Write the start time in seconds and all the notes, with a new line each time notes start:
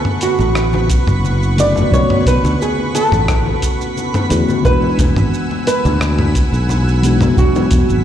Already playing: D3 A3 B3 C#4 F#4 B4 F#5 B5 C#6
0.05 mid tom, high conga
0.21 F#4, closed hi-hat, cabasa
0.39 A1, muted conga, low conga, cabasa
0.55 cross-stick, cabasa
0.73 muted conga, high conga
0.90 kick, closed hi-hat, cabasa
1.07 F#1, mid tom, cabasa
1.24 muted conga, high conga, cabasa
1.43 cabasa
1.56 D3 A3 B3 C#4 F#4 D5, closed hi-hat, muted conga, cabasa
1.76 high conga, low conga, cabasa
1.89 B1 D3 A3 B3, kick
1.93 C#4 F#4 C#5, cabasa
2.10 mid tom, muted conga, low conga
2.20 C#5
2.26 B1 B4, kick, closed hi-hat, high conga, cabasa
2.44 D2, muted conga, cabasa
2.62 G#4, cabasa
2.78 high conga
2.95 A4, closed hi-hat, muted conga, cabasa
3.12 A1, mid tom, low conga, cabasa
3.28 kick, cross-stick, muted conga, cabasa
3.46 high conga
3.62 kick, closed hi-hat, cabasa
3.81 muted conga, cabasa
3.97 high conga, cabasa
4.14 mid tom, muted conga, cabasa
4.29 E2 D3 A3 B3 C#4 F#4, closed hi-hat, cabasa
4.48 high conga, low conga, cabasa
4.62 E1 E3 G#3 B3 B4 F#5 G#5 E6, kick, muted conga
4.66 D4 F#4, cabasa
4.82 low conga
4.99 E1, kick, closed hi-hat, muted conga, high conga, cabasa
5.16 G#1, mid tom, cabasa
5.34 cabasa
5.50 muted conga, high conga
5.67 B4, closed hi-hat, cabasa
5.85 D2, muted conga, low conga, cabasa
6.01 cross-stick, cabasa
6.19 mid tom, high conga
6.35 kick, closed hi-hat, muted conga, cabasa
6.52 B1, cabasa
6.69 muted conga, high conga, cabasa
6.88 cabasa
7.02 E3 G#3 B3 D4 F#4, closed hi-hat, cabasa
7.21 mid tom, muted conga, high conga, low conga, cabasa
7.34 E1 E3 F#3 B3, kick, cabasa
7.38 D4 F#4
7.55 muted conga, low conga, cabasa
7.71 E1, kick, closed hi-hat, high conga, cabasa
7.89 G#1, cabasa